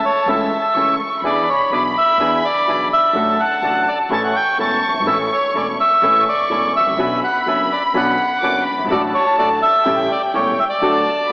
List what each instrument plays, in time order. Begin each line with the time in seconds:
Already playing: violin section A5
0.05 bandoneon C#5
0.26 upright bass C#2, grand piano C#2 C#3 E3 A3 C#4 A4, bandoneon C#4 E4 A4 E5
0.75 upright bass C#2, grand piano C#2 C#3 E3 A3 C#4 A4, bandoneon C#4 E4 A4, violin section C#6
1.22 upright bass E2, grand piano E2 E3 B3 D4 G#4, bandoneon D4 E4 G#4 D5, violin section B5
1.49 bandoneon C#5
1.70 upright bass B1, grand piano B1 B2 E3 B3 D4 G#4, bandoneon D4 E4 G#4 D5
1.98 bandoneon E5
2.18 upright bass E2, grand piano E2 E3 B3 D4 G#4, bandoneon D4 E4 G#4
2.45 bandoneon D5
2.66 upright bass B1, grand piano B1 B2 E3 B3 D4 G#4, bandoneon D4 E4 G#4
2.93 bandoneon E5
3.13 upright bass A1, grand piano A1 A2 F#3 A3 D4 A4, bandoneon D4 F#4 A4, violin section A5
3.40 bandoneon F#5
3.62 upright bass A1, grand piano A1 A2 F#3 A3 D4 A4, bandoneon D4 F#4 A4
3.88 bandoneon D5
4.09 upright bass A1, grand piano A1 A2 E3 A3 C#4 A4, bandoneon C#4 E4 A4 A5, violin section C#6
4.24 bandoneon F#5
4.36 bandoneon G5
4.58 upright bass E1, grand piano E1 E2 E3 A3 C#4 A4, bandoneon C#4 E4 A4 A5
4.88 upright bass F#1, grand piano F#1
4.94 grand piano G1, upright bass G1
5.00 upright bass G#1, grand piano G#1
5.06 upright bass A1, grand piano A1 A2 E3 A3 C#4 A4, bandoneon C#4 E4 A4 E5
5.33 bandoneon C#5
5.54 upright bass E1, grand piano E1 E2 E3 A3 C#4 A4, bandoneon C#4 E4 A4 D5
5.80 bandoneon E5
6.02 upright bass A1, grand piano A1 A2 E3 A3 C#4 A4, bandoneon C#4 E4 A4, violin section C#6
6.29 bandoneon D5
6.49 upright bass E1, grand piano E1 E2 E3 A3 C#4 A4, bandoneon C#4 E4 A4
6.76 upright bass G#1, grand piano G#1, bandoneon E5
6.86 upright bass A1, grand piano A1
6.91 upright bass A#1, grand piano A#1
6.97 upright bass B1, grand piano B1 B2 D3 B3 C#4 F#4, bandoneon C#4 D4 B4, violin section B5
7.24 bandoneon F#5
7.43 grand piano F#1 F#2 D3 B3 C#4 F#4, upright bass F#1, bandoneon C#4 F#5
7.47 bandoneon D4 B4 E5
7.72 bandoneon D5
7.94 grand piano B1 B2 D3 B3 C#4 F#4, upright bass B1, bandoneon C#4 D4 B4 F#5
8.41 grand piano F#1 F#2 D3 B3 C#4 F#4, upright bass F#1, bandoneon C#4 D4 B4, violin section D6
8.65 violin section B5
8.72 upright bass F#1, grand piano F#1
8.78 upright bass G1, grand piano G1
8.85 upright bass G#1, grand piano G#1
8.90 upright bass A1, grand piano A1 A2 D3 F#3 A3 F#4, bandoneon D4 F#4 A4 D5, violin section A5
9.14 bandoneon C#5
9.38 grand piano A1 A2 D3 F#3 A3 F#4, upright bass A1, bandoneon D4 F#4 A4 D5
9.62 bandoneon E5
9.85 grand piano A1 A2 C#3 G3 A3 E4, upright bass A1, bandoneon C#4 G4 A4, violin section G5
10.12 bandoneon D5
10.33 upright bass E1, grand piano E1 E2 C#3 G3 A3 E4, bandoneon C#4 G4 A4 C#5
10.59 bandoneon E5
10.70 bandoneon D5
10.82 grand piano D2 D3 F#3 A3 F#4, upright bass D2, bandoneon D4 F#4 A4, violin section A5